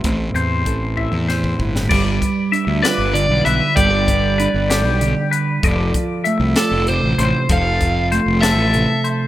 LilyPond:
<<
  \new Staff \with { instrumentName = "Overdriven electric guitar" } { \time 6/8 \key g \mixolydian \tempo 4. = 64 r2. | r4. b'8 d''8 e''8 | d''2~ d''8 r8 | r4. a'8 c''4 |
f''4 r8 e''4 r8 | }
  \new Staff \with { instrumentName = "Clean electric guitar" } { \time 6/8 \key g \mixolydian r8 c''4 e''8 c''8 b'8 | d''4 e''8 d''4 b'8 | g'4 b'8 g'4 b'8 | d''4 e''8 d''4 c''8 |
a'4 c''8 a'4 c''8 | }
  \new Staff \with { instrumentName = "Clean electric guitar" } { \time 6/8 \key g \mixolydian << { <a c' g' c''>8 c'8 a'8 e'16 g'16 c''8 e'16 g'16 | b'8 b'4 f'4. | a'16 b'16 b'4 a'16 b'4~ b'16 | a'8 f'4 f'4. |
a'8 f'4 a'4. | } \\ { a,2. | g4 d'4 d4 | g4 d'4 d4 | f4 a4 c4 |
f4 a4 c4 | } >> }
  \new Staff \with { instrumentName = "Fingered electric bass" } { \clef bass \time 6/8 \key g \mixolydian a,,8 e,8 a,,8. e,8. g,,8 | g,,8 r8. d,16 r16 g,,8 b,,16 b,,16 r16 | g,,4~ g,,16 g,,8 b,,8 r8. | f,,8 r8. c,16 r16 f,,8 a,,16 a,,16 r16 |
f,,4~ f,,16 f,,8 a,,8 r8. | }
  \new DrumStaff \with { instrumentName = "Drums" } \drummode { \time 6/8 <hh bd>8 hh8 <hh bd>8 bd16 tommh16 sn16 bd16 bd16 sn16 | <cymc bd>8 <hh bd>8 hh8 <hh sn>8 hh8 hh8 | <hh bd>8 <hh bd>8 hh8 <hh sn>8 hh8 hh8 | <hh bd>8 <hh bd>8 hh8 <hh sn>8 hh8 hh8 |
<hh bd>8 <hh bd>8 hh8 <hh sn>8 hh8 hh8 | }
>>